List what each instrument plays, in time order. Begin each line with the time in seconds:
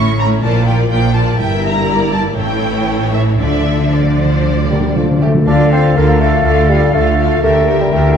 Already playing: double bass section A1, cello section A2, harp A2 C#4 E4, viola section A3 C#4, violin section E4 C#5 C#6
0.19 viola section A3 C#4, harp C#4, violin section E4 C#5 A#5
0.43 double bass section A#1, cello section A#2, harp A#2, viola section F3 F4, violin section A#4 D5 A5
0.67 viola section F3 F4, harp A#3, violin section A#4 D5 G5
0.91 double bass section A#1, cello section A#2, viola section F3 F4, harp D4, violin section A#4 D5 G5
1.16 viola section F3 F4, harp A#3, violin section A#4 D5 A5
1.40 double bass section G1, harp G2, cello section G2, viola section G3 E4, violin section A#4 E5 G5
1.64 harp A#3, violin section A#5
1.89 harp E4, violin section D5
2.13 harp A#3, violin section A5
2.37 double bass section A1, timpani A2, cello section A2, harp A2, viola section E3 E4, violin section A4 C#5 G5
2.63 harp A3
2.88 harp C#4
3.13 harp A3, violin section E5
3.40 double bass section D2, harp D3, cello section D3, timpani D3, viola section F3 D4, violin section A4 D5 E5
3.48 timpani D3
3.64 timpani D3, harp D4
3.71 timpani D3
3.80 timpani D3
3.87 timpani D3
3.92 viola section F3 D4, harp F4, violin section A4 D5
4.03 timpani D3
4.18 timpani D3, harp D4, violin section C5
4.26 timpani D3
4.34 timpani D3
4.41 timpani D3, harp A3
4.49 timpani D3
4.57 timpani D3
4.65 timpani D3
4.70 timpani D3, bassoon G3, harp D4, clarinet G4, violin section A#4
4.80 timpani D3
4.88 timpani D3
4.96 timpani D3, bassoon F3, clarinet F4, harp F4, violin section A4
5.03 timpani D3
5.11 timpani D3
5.19 timpani D3, bassoon A3, harp D4, violin section G4, clarinet A4
5.27 timpani D3
5.35 timpani D3
5.47 double bass section D2, cello section D3, harp D3, bassoon D4, french horn section F4 A4, viola section F4, oboe A4, violin section A4 F5, clarinet D5, flute section F5
5.65 harp D4
5.72 bassoon C4, viola section F4, violin section A4 F5, clarinet C5
5.81 harp F4
5.96 double bass section D2, cello section D3, bassoon A#3, harp D4, viola section F4, violin section A4 F5, clarinet A#4
6.13 harp F4
6.20 bassoon A3, viola section F4, violin section A4 F5, clarinet A4
6.29 harp D4
6.45 double bass section D2, cello section D3, harp A3, viola section F4, violin section A4 F5
6.62 harp D4
6.69 bassoon G3, viola section F4, clarinet G4, violin section A4 F5
6.78 harp F4
6.94 double bass section D2, cello section D3, bassoon A3, harp D4, french horn section F4 A4, viola section F4, clarinet A4, violin section A4 F5
7.11 harp F4
7.19 viola section F4, violin section A4 F5
7.27 harp D4
7.43 double bass section D2, cello section D3, timpani D3, harp D3, bassoon A3, french horn section G4 A#4, viola section G4, clarinet A4, violin section A#4 E5, oboe A#4, flute section G5
7.61 harp A#3
7.68 viola section G4, violin section A#4 E5
7.77 harp E4, clarinet G4
7.81 bassoon G3
7.92 double bass section D2, cello section D3, bassoon A3, harp A#3, viola section G4, clarinet A4, violin section A#4 E5
8.09 harp E4